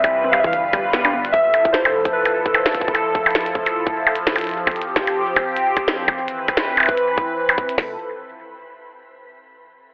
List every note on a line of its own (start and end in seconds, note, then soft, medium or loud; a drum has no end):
0.00 0.51 C2 medium
0.00 0.52 E3 medium
0.00 0.51 C4 medium
0.00 0.52 B4 medium
0.00 0.34 E5 medium
0.00 closed hi-hat loud
0.00 percussion blips medium
0.04 kick loud
0.24 0.29 C4 loud
0.32 0.43 G3 medium
0.32 0.40 F5 medium
0.32 closed hi-hat medium
0.32 percussion blips medium
0.39 0.47 E5 medium
0.44 0.53 E3 loud
0.44 1.09 F5 medium
0.44 kick loud
0.53 1.32 G1 medium
0.53 1.33 G3 medium
0.53 1.33 F4 medium
0.53 1.33 B4 medium
0.53 closed hi-hat medium
0.73 0.84 G3 loud
0.73 kick loud
0.73 closed hi-hat medium
0.73 percussion blips medium
0.93 1.04 B3 medium
0.93 snare loud
1.05 1.13 D4 medium
1.05 closed hi-hat medium
1.05 percussion blips medium
1.14 1.24 B3 medium
1.25 closed hi-hat medium
1.32 4.54 F1 medium
1.32 6.13 F3 medium
1.32 4.53 E4 medium
1.32 4.53 A4 medium
1.32 1.70 E5 loud
1.32 kick loud
1.32 closed hi-hat medium
1.54 closed hi-hat medium
1.54 percussion blips medium
1.65 kick loud
1.73 2.15 C5 medium
1.73 snare loud
1.85 closed hi-hat medium
1.85 percussion blips medium
2.05 kick loud
2.05 closed hi-hat medium
2.13 2.90 B4 medium
2.25 closed hi-hat medium
2.25 percussion blips medium
2.46 kick loud
2.54 closed hi-hat medium
2.54 percussion blips medium
2.66 snare loud
2.75 kick medium
2.75 closed hi-hat medium
2.81 kick medium
2.88 kick medium
2.93 4.11 A4 medium
2.93 closed hi-hat loud
2.93 percussion blips medium
3.15 kick loud
3.26 closed hi-hat soft
3.26 percussion blips medium
3.31 closed hi-hat soft
3.35 snare loud
3.35 closed hi-hat soft
3.41 closed hi-hat soft
3.46 closed hi-hat medium
3.55 kick loud
3.66 closed hi-hat loud
3.66 percussion blips soft
3.87 kick loud
4.07 percussion blips medium
4.16 closed hi-hat medium
4.27 kick loud
4.27 snare loud
4.36 closed hi-hat medium
4.36 percussion blips medium
4.38 closed hi-hat medium
4.41 closed hi-hat medium
4.47 closed hi-hat soft
4.49 closed hi-hat soft
4.51 closed hi-hat soft
4.56 7.75 C4 medium
4.56 6.15 G4 medium
4.67 kick loud
4.67 closed hi-hat soft
4.67 percussion blips medium
4.72 closed hi-hat soft
4.76 closed hi-hat soft
4.82 closed hi-hat medium
4.96 kick loud
4.96 snare loud
5.07 closed hi-hat medium
5.07 percussion blips medium
5.36 kick loud
5.36 closed hi-hat soft
5.36 percussion blips medium
5.57 closed hi-hat medium
5.77 kick loud
5.77 closed hi-hat medium
5.77 percussion blips soft
5.88 snare loud
6.08 kick loud
6.08 percussion blips medium
6.17 7.76 E3 medium
6.17 7.76 B4 medium
6.28 closed hi-hat medium
6.48 kick loud
6.48 closed hi-hat medium
6.48 percussion blips medium
6.57 snare loud
6.77 closed hi-hat medium
6.77 percussion blips medium
6.80 closed hi-hat soft
6.80 percussion blips medium
6.83 closed hi-hat soft
6.83 percussion blips soft
6.86 kick loud
6.86 percussion blips soft
6.97 closed hi-hat medium
7.18 kick loud
7.49 closed hi-hat medium
7.49 percussion blips medium
7.58 kick loud
7.69 closed hi-hat medium
7.78 7.97 F1 loud
7.78 7.97 F3 medium
7.78 7.97 E4 medium
7.78 7.97 A4 medium
7.78 kick loud
7.78 snare loud
7.78 open hi-hat medium